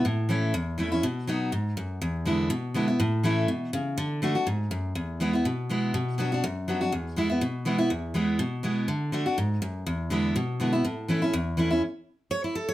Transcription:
0.05 A2
0.29 E3 A3 C#4 E4
0.54 E2
0.78 E3 A3 C#4 E4
0.92 C#4 E4
1.03 B2
1.27 F#3 B3 D#4 F#4
1.52 G#2
1.77 F#2
2.02 E2
2.25 D3 G#3 B3 E4
2.50 B2
2.74 D3 G#3 B3 E4
2.88 B3 E4
3.00 A2
3.23 E3 A3 C#4 E4
3.48 B2
3.73 C#3
3.98 D3
4.22 D3 A3 D4 F#4
4.35 D4 F#4
4.47 G#2
4.71 F#2
4.95 E2
5.20 E3 G#3 B3 E4
5.33 B3 E4
5.45 B2
5.70 E3 G#3 B3 E4
5.94 B2
6.18 F#3 B3 D4 F#4
6.32 D4 F#4
6.44 F#2
6.68 F#3 B3 D4 F#4
6.81 D4 F#4
6.92 E2
7.16 E3 G#3 B3 E4
7.30 B3 E4
7.41 B2
7.65 E3 G#3 B3 E4
7.78 B3 E4
7.90 E2
8.14 E3 G#3 B3 E4
8.39 B2
8.63 E3 G#3 B3 E4
8.88 D3
9.12 D3 A3 D4 F#4
9.26 D4 F#4
9.38 G#2
9.62 F#2
9.87 E2
10.10 D3 G#3 B3 E4
10.36 B2
10.60 D3 G#3 B3 E4
10.73 B3 E4
10.85 A2
11.08 E3 A3 C#4 E4
11.22 C#4 E4
11.33 E2
11.57 E3 A3 C#4 E4
11.70 C#4 E4
12.31 C#5
12.44 E4
12.55 A4
12.69 C#5

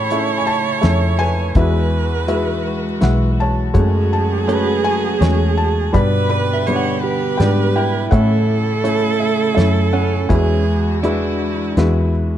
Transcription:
Already playing: A1 A2 C#3 A3 C#4 E4 C#5 E5 A5 B5
0.10 A3 C#4 E4 C#5 E5, closed hi-hat
0.38 G#5
0.47 A5
0.81 F2 A3 C#4 E4 C#5 E5, snare, closed hi-hat
1.19 B4 G#5
1.55 E2 E3 G#3 E4 F#4 B4 E5, kick, closed hi-hat
2.28 G#3 E4 F#4 B4 E5, closed hi-hat
3.01 B1 G#3 E4 F#4 B4 E5 F#5, snare, closed hi-hat
3.40 C#5 A5
3.74 F#1 F#2 F#3 G#3 A3 C#4 F#4 G#4 C#5, kick, closed hi-hat
4.13 A5
4.47 G#3 A3 C#4 F#4 B4 C#5, closed hi-hat
4.84 G#4 G#5
5.21 E2 G#3 A3 C#4 F#4 C#5, snare, closed hi-hat
5.57 A5
5.93 G2 B2 D3 G3 B3 D4 G4 B4 D5 B5, kick, closed hi-hat
6.29 B4 D5 B5
6.54 E5
6.67 G3 B3 D4 B4 C#5, closed hi-hat
6.76 F#5
7.02 G4 B4
7.38 G#2 G3 B3 D4 B4 D5 G5, snare, closed hi-hat
7.76 E4 G5
8.11 A1 A2 C#3 A3 C#4 E4 A4 C#5 E5 F#5, kick, closed hi-hat
8.84 A3 C#4 E4 C#5 E5, closed hi-hat
9.20 E5
9.55 F#2 A3 C#4 E4 C#5 E5, snare, closed hi-hat
9.93 C#4 F#5
10.29 E2 E3 G#3 E4 F#4 G#4 B4 E5 G#5, kick, closed hi-hat
11.03 G#3 D4 E4 F#4 B4 E5, closed hi-hat
11.77 E2 G#3 E4 F#4 B4 E5, snare, closed hi-hat

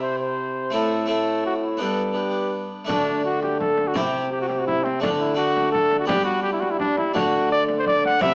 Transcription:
Already playing: C3 C4 E4
0.02 C5
0.19 C5
0.70 A2 A3 C4 E4 A4
1.06 A3 C4 E4 A4
1.46 F#4
1.63 E4
1.77 G2 B3 D4 G4 A4
2.13 B3 D4 G4
2.85 D3 A3 D4 F#4
2.89 D3 D4, frame drum
3.25 F#4
3.42 G4, frame drum
3.60 A4, frame drum
3.78 frame drum
3.87 F#4
3.94 C3 C4 E4 G4, frame drum
4.31 G4
4.41 F#4
4.48 G4, frame drum
4.59 F#4
4.67 E4, frame drum
4.84 C4, frame drum
5.00 D3 A3 D4, frame drum
5.19 E4
5.35 A3 D4 F#4
5.56 frame drum
5.72 A4, frame drum
5.91 frame drum
6.00 F#4
6.06 G3 B3 D4 G4, frame drum
6.25 F#4
6.43 G4
6.53 E4
6.60 F#4, frame drum
6.71 E4
6.80 D4, frame drum
6.97 E4, frame drum
7.14 D3 A3 D4 F#4, frame drum
7.52 D5
7.68 frame drum
7.79 C5
7.86 D5, frame drum
8.04 F#5, frame drum
8.19 C3 C4 E4 E5, frame drum

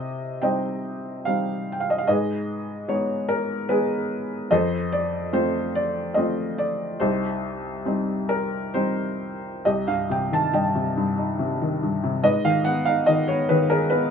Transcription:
Already playing: C3 G4 C5 D#5
0.42 G3 C4 D#4 C5 D#5 G5
1.25 G3 C4 D#4 F5
1.72 G5
1.80 F5
1.90 D#5
1.98 F5
2.07 G#2 G#4 B4 D#5
2.88 G#3 B3 D#4 C#5
3.29 A#4
3.69 G#3 B3 D#4 G#4 B4
4.51 F2 A4 C5 D#5
4.92 D5
5.33 A3 C4 F4 C5
5.75 D5
6.14 A3 C4 F4 D#5
6.58 D5
7.00 C2 D#4 G4 C5
7.85 G3 C4 D#4
8.29 A#4
8.74 G3 C4 D#4 C5
9.65 C2 G4 D#5
9.88 G2 F5
10.10 C3 G5
10.31 D#3 A5
10.53 G2 D#5 G5
10.75 C3
10.97 G2
11.18 D#4
11.39 C3
11.62 D#3
11.83 G2
12.04 C3
12.23 G#2 B4 D#5
12.45 D#3 F5
12.65 B3 F#5
12.85 D#4 F5
13.06 D#3 D#5
13.28 B3 C#5
13.49 D#3 B4
13.70 G#4 A#4
13.90 B3 B4

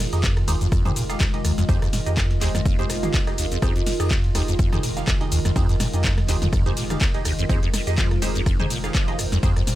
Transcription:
Already playing: D#3 G#3 F4 G#4 A#4
0.00 open hi-hat, cabasa
0.11 F2 D#4 G4 G#4 D#5, snare, closed hi-hat, cabasa
0.23 D#2, kick, snare, clap, closed hi-hat, ride, cabasa
0.37 cross-stick, snare, closed hi-hat
0.48 F1 D#2 D#4 G4 G#4 C5, snare, closed hi-hat, open hi-hat, ride, cabasa
0.61 F2, snare, closed hi-hat, cabasa
0.72 F2, kick, cross-stick, closed hi-hat, ride, cabasa
0.85 F1 F2 D#4 G4 G#4 C5, closed hi-hat, mid tom
0.96 A#2, closed hi-hat, open hi-hat, ride, cabasa
1.09 D#4 G4 G#4 F5, cross-stick, snare, closed hi-hat, cabasa
1.20 D#2, kick, snare, clap, closed hi-hat, ride, cabasa
1.33 F1 D#4 G4 G#4 D#5, snare, closed hi-hat
1.45 D#2, cross-stick, closed hi-hat, open hi-hat, ride, cabasa
1.58 F2, snare, closed hi-hat, cabasa
1.69 F1 F2 D#4 G4 G#4 C5, kick, closed hi-hat, ride, cabasa
1.82 F2, cross-stick, snare, closed hi-hat
1.93 A#2, snare, closed hi-hat, open hi-hat, ride, cabasa
2.06 F2 D#4 G4 G#4 D#5, closed hi-hat, cabasa
2.17 D#2, kick, cross-stick, snare, clap, closed hi-hat, ride, cabasa
2.30 snare, closed hi-hat
2.41 F1 D#2 D#4 G4 G#4 C5, snare, clap, closed hi-hat, open hi-hat, ride, cabasa
2.55 F2, cross-stick, snare, closed hi-hat, mid tom, cabasa
2.65 F2, kick, closed hi-hat, ride, cabasa
2.79 F1 F2 D#4 G4 G#4 C5, closed hi-hat
2.89 A#2, cross-stick, snare, closed hi-hat, open hi-hat, ride, cabasa
3.03 D#4 G4 G#4 F5, snare, closed hi-hat, mid tom, cabasa
3.14 D#2, kick, snare, clap, closed hi-hat, ride, cabasa
3.27 F1 D#4 G4 G#4 D#5, cross-stick, snare, closed hi-hat
3.38 D#2, closed hi-hat, open hi-hat, ride, cabasa
3.51 F2, closed hi-hat, cabasa
3.62 F1 F2 D#4 G4 G#4 C5, kick, cross-stick, closed hi-hat, ride, cabasa
3.76 F2, closed hi-hat
3.86 A#2, snare, open hi-hat, ride, cabasa
4.00 F2 D#4 G4 G#4 D#5, cross-stick, snare, closed hi-hat, cabasa
4.10 D#2, kick, snare, clap, ride, cabasa
4.24 snare, closed hi-hat
4.35 F1 D#2 D#4 G4 G#4 C5, cross-stick, snare, closed hi-hat, open hi-hat, ride, cabasa
4.48 F2, snare, closed hi-hat, cabasa
4.59 F2, kick, closed hi-hat, ride, cabasa
4.72 F1 F2 D#4 G4 G#4 C5, cross-stick, closed hi-hat, mid tom
4.83 A#2, closed hi-hat, open hi-hat, ride, cabasa
4.97 D#4 G4 G#4 F5, snare, closed hi-hat, cabasa
5.07 D#2, kick, cross-stick, snare, clap, closed hi-hat, ride, cabasa
5.21 F1 D#4 G4 G#4 D#5, snare, closed hi-hat
5.32 D#2, closed hi-hat, open hi-hat, ride, cabasa
5.45 F2, cross-stick, snare, closed hi-hat, cabasa
5.56 F1 F2 D#4 G4 G#4 C5, kick, closed hi-hat, ride, cabasa
5.69 F2, snare, closed hi-hat
5.80 A#2, cross-stick, snare, closed hi-hat, open hi-hat, ride, cabasa
5.93 F2 D#4 G4 G#4 D#5, closed hi-hat, cabasa
6.04 D#2, kick, snare, clap, closed hi-hat, ride, cabasa
6.18 cross-stick, snare, closed hi-hat
6.28 F1 D#2 D#4 G4 G#4 C5, snare, clap, closed hi-hat, open hi-hat, ride, cabasa
6.42 F2, snare, closed hi-hat, mid tom, cabasa
6.53 F2, kick, cross-stick, closed hi-hat, ride, cabasa
6.66 F1 F2 D#4 G4 G#4 C5, closed hi-hat
6.77 A#2, snare, closed hi-hat, open hi-hat, ride, cabasa
6.90 D#4 G4 G#4 F5, cross-stick, snare, closed hi-hat, mid tom, cabasa
7.01 D#2, kick, snare, clap, closed hi-hat, ride, cabasa
7.14 F1 D#4 G4 G#4 D#5, snare, closed hi-hat
7.25 D#2, cross-stick, closed hi-hat, open hi-hat, ride, cabasa
7.39 F2, closed hi-hat, cabasa
7.49 F1 F2 D#4 G4 G#4 A#4 C5, kick, closed hi-hat, ride, cabasa
7.63 F2, closed hi-hat
7.74 A#2, cross-stick, snare, open hi-hat, ride, cabasa
7.85 F2 D#4 G4 G#4 C5 D#5, snare, closed hi-hat, cabasa
7.98 F3, kick, snare, clap, closed hi-hat, ride, cabasa
8.11 cross-stick, snare, closed hi-hat
8.22 F1 D#2 D#4 G4 G#4 C5, snare, closed hi-hat, open hi-hat, ride, cabasa
8.35 F2, snare, closed hi-hat, cabasa
8.46 F2, kick, cross-stick, closed hi-hat, ride, cabasa
8.59 F1 F2 D#4 G4 G#4 C5, closed hi-hat, mid tom
8.70 A#2, closed hi-hat, open hi-hat, ride, cabasa
8.84 D#4 G4 G#4 F5, cross-stick, snare, closed hi-hat, cabasa
8.94 F3, kick, snare, clap, closed hi-hat, ride, cabasa
9.07 F1 D#4 G4 G#4 D#5, snare, closed hi-hat
9.19 D#2, cross-stick, closed hi-hat, open hi-hat, ride, cabasa
9.32 F2, snare, closed hi-hat, cabasa
9.43 F1 F2 D#4 G4 G#4 C5, kick, closed hi-hat, ride, cabasa
9.56 F2, cross-stick, snare, closed hi-hat
9.67 A#2, snare, closed hi-hat, open hi-hat, ride, cabasa

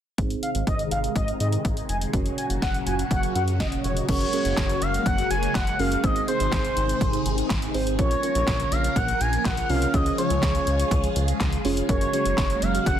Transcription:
0.18 G#1 C3 D#3 G#3 C4 D#4 G#4 C5, kick, closed hi-hat
0.30 closed hi-hat
0.43 F5, closed hi-hat
0.55 G#1, closed hi-hat
0.67 G#1 D#5, kick, closed hi-hat
0.79 closed hi-hat
0.91 G#1 F5, closed hi-hat
1.04 closed hi-hat
1.16 G#1 D#5, kick, closed hi-hat
1.28 closed hi-hat
1.40 G#2 D#5, closed hi-hat
1.52 closed hi-hat
1.65 G#1, kick, closed hi-hat
1.77 closed hi-hat
1.89 F1 G#5, closed hi-hat
2.01 closed hi-hat
2.13 F#1 A#2 C#3 F#3 C#4 F#4 A#4 C#5, kick, closed hi-hat
2.26 closed hi-hat
2.38 G#5, closed hi-hat
2.50 F#1, closed hi-hat
2.62 F#1 F#5, kick, snare, closed hi-hat
2.74 closed hi-hat
2.87 F#1 G#5, closed hi-hat
2.99 closed hi-hat
3.11 F#1 F#5, kick, closed hi-hat
3.23 closed hi-hat
3.35 F#2 F#5, closed hi-hat
3.48 closed hi-hat
3.60 F#1 D#5, kick, snare, closed hi-hat
3.72 closed hi-hat
3.84 F1 C#5, closed hi-hat
3.97 closed hi-hat
4.09 F#1 C#3 F#3 G#3 A#3 C#4 F#4 G#4 A#4 C#5, kick, closed hi-hat, crash
4.21 closed hi-hat
4.33 C#4 F#4 G#4 A#4, closed hi-hat
4.45 F#1, closed hi-hat
4.57 F#1, kick, snare, clap, closed hi-hat
4.70 closed hi-hat
4.82 F#1 F5, closed hi-hat
4.94 closed hi-hat
5.06 F#1 F#5, kick, closed hi-hat
5.18 closed hi-hat
5.31 F#1 G#5, closed hi-hat
5.43 closed hi-hat
5.55 F#1 F#5, kick, snare, clap, closed hi-hat
5.67 closed hi-hat
5.79 F#1 C#4 F#4 G#4 A#4 F5, open hi-hat
5.92 closed hi-hat
6.04 G#1 C3 D#3 C4 D#4 G#4 C5 D#5, kick, closed hi-hat
6.16 closed hi-hat
6.28 C4 D#4 G#4 C5, closed hi-hat
6.40 G#1, closed hi-hat
6.52 G#1, kick, snare, clap, closed hi-hat
6.65 closed hi-hat
6.77 G#1, closed hi-hat
6.89 closed hi-hat
7.01 G#1, kick, closed hi-hat
7.13 closed hi-hat
7.26 G#1, closed hi-hat
7.38 closed hi-hat
7.50 G#1, kick, snare, clap, closed hi-hat
7.62 closed hi-hat
7.74 G#1 C4 D#4 G#4 C5, open hi-hat
7.87 closed hi-hat
7.99 A#1 C#3 F3 A#3 C#4 F4 A#4 C#5, kick, closed hi-hat
8.11 closed hi-hat
8.23 C#4 F4 A#4 C#5, closed hi-hat
8.35 A#1, closed hi-hat
8.48 A#1, kick, snare, clap, closed hi-hat
8.60 closed hi-hat
8.72 A#1 F5, closed hi-hat
8.84 closed hi-hat
8.96 A#1 F#5, kick, closed hi-hat
9.08 closed hi-hat
9.21 A#1 G#5, closed hi-hat
9.33 closed hi-hat
9.45 A#1 F#5, kick, snare, clap, closed hi-hat
9.57 closed hi-hat
9.69 C2 C#4 F4 A#4 C#5 F5, open hi-hat
9.82 closed hi-hat
9.94 C#2 G#3 C#4 F4 G#4 C#5 D#5, kick, closed hi-hat
10.06 closed hi-hat
10.18 C#4 F4 G#4 C#5, closed hi-hat
10.30 C#2, closed hi-hat
10.43 C#2, kick, snare, clap, closed hi-hat
10.55 closed hi-hat
10.67 C#2, closed hi-hat
10.80 closed hi-hat
10.91 C#2, kick, closed hi-hat
11.04 closed hi-hat
11.16 C#2, closed hi-hat
11.28 closed hi-hat
11.40 C#2, kick, snare, clap, closed hi-hat
11.53 closed hi-hat
11.65 F1 C#4 F4 G#4 C#5, open hi-hat
11.77 closed hi-hat
11.89 F#1 C#3 F#3 A#3 C#4 F#4 A#4 C#5, kick, closed hi-hat
12.01 closed hi-hat
12.13 C#4 F#4 G#4 C#5, closed hi-hat
12.26 F#1, closed hi-hat
12.38 F#1, kick, snare, clap, closed hi-hat
12.50 closed hi-hat
12.62 F#1 F5, closed hi-hat
12.75 closed hi-hat
12.86 F#1 F#5, kick, closed hi-hat

